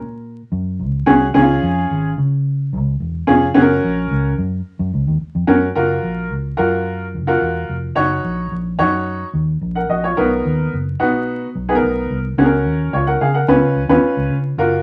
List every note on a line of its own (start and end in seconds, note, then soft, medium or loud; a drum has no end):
0.00 0.41 A#2 loud
0.52 0.81 F#2 medium
0.80 1.02 C#2 medium
1.06 1.29 C2 medium
1.06 1.25 C#4 medium
1.06 1.25 F#4 medium
1.06 1.25 G#4 medium
1.34 1.57 C#2 loud
1.34 2.08 C#4 medium
1.34 1.41 D#4 medium
1.34 2.08 G#4 medium
1.41 2.11 F4 medium
1.62 1.84 F2 medium
1.91 2.13 G#1 medium
2.18 2.74 C#3 medium
2.73 2.95 C#2 medium
3.00 3.22 E1 medium
3.27 3.50 F1 medium
3.27 3.46 C#4 medium
3.27 3.46 F4 medium
3.27 3.46 G#4 medium
3.54 3.78 F#1 loud
3.54 4.28 C#4 medium
3.54 4.28 F#4 medium
3.54 3.61 G#4 medium
3.61 4.31 A#4 medium
3.84 4.05 A#1 medium
4.11 4.33 C#2 medium
4.38 4.60 F#2 loud
4.79 4.90 F#2 loud
4.94 5.04 C#2 medium
5.07 5.18 D#2 medium
5.21 muted fingered electric bass stroke soft
5.35 5.46 F2 medium
5.47 5.70 F#2 medium
5.47 5.66 C#4 medium
5.47 5.66 F#4 medium
5.47 5.66 A#4 medium
5.75 5.98 F#1 medium
5.75 6.31 F4 medium
5.75 6.31 F#4 medium
5.75 6.31 A#4 medium
6.03 6.32 A#1 medium
6.32 6.53 C#2 medium
6.57 7.16 F#2 loud
6.57 7.03 F4 medium
6.57 7.03 F#4 medium
6.57 7.04 A#4 medium
7.15 7.36 F#1 medium
7.27 7.73 F4 medium
7.27 7.73 F#4 medium
7.27 7.73 A#4 medium
7.42 7.63 E1 medium
7.69 7.91 F1 medium
7.95 8.19 F#1 medium
7.95 8.51 D#4 medium
7.95 8.51 F#4 medium
7.95 8.51 C#5 medium
8.24 8.46 A#1 medium
8.52 8.80 A#1 medium
8.78 9.23 F#2 medium
8.78 9.25 D#4 medium
8.78 9.24 F#4 medium
8.78 9.24 C#5 medium
9.33 9.56 D#2 medium
9.61 9.83 A#1 medium
9.75 9.89 A#4 soft
9.75 9.88 F#5 medium
9.89 10.11 A#1 medium
9.89 10.02 F#4 medium
9.89 10.02 D#5 medium
10.04 10.30 F4 soft
10.04 10.29 C#5 medium
10.17 10.39 B1 loud
10.17 10.72 B3 medium
10.17 10.72 D#4 medium
10.17 10.72 A#4 medium
10.45 10.67 D#2 medium
10.73 10.95 F#1 loud
11.00 11.44 B2 loud
11.00 11.45 B3 medium
11.00 11.45 D#4 medium
11.00 11.45 F#4 medium
11.55 11.77 B1 medium
11.69 12.14 B3 medium
11.69 12.14 D#4 medium
11.69 11.75 G#4 medium
11.75 12.17 A#4 medium
11.83 12.04 B1 medium
12.10 12.32 C2 medium
12.37 12.66 C#2 loud
12.37 12.93 C#4 medium
12.37 12.93 F#4 medium
12.37 12.44 G#4 medium
12.45 12.96 A#4 medium
12.66 12.87 D#2 medium
12.93 13.15 C#2 medium
12.93 13.06 F4 medium
12.93 13.06 C#5 medium
13.07 13.20 A#4 medium
13.07 13.19 F#5 medium
13.21 13.43 C#3 loud
13.21 13.34 G#4 medium
13.21 13.33 F5 medium
13.34 13.60 A#4 medium
13.34 13.60 F#5 medium
13.48 13.59 C#2 loud
13.48 13.81 C#4 medium
13.48 13.81 F4 medium
13.48 13.81 B4 medium
13.62 13.72 C#3 medium
13.75 13.86 C#2 medium
13.88 14.00 D#2 medium
13.88 14.35 C#4 medium
13.88 14.35 F4 medium
13.88 14.35 B4 medium
14.17 14.28 C#2 medium
14.30 14.52 C#3 medium
14.57 14.80 F#1 medium
14.57 14.82 F4 medium
14.57 14.82 F#4 medium
14.57 14.82 A#4 medium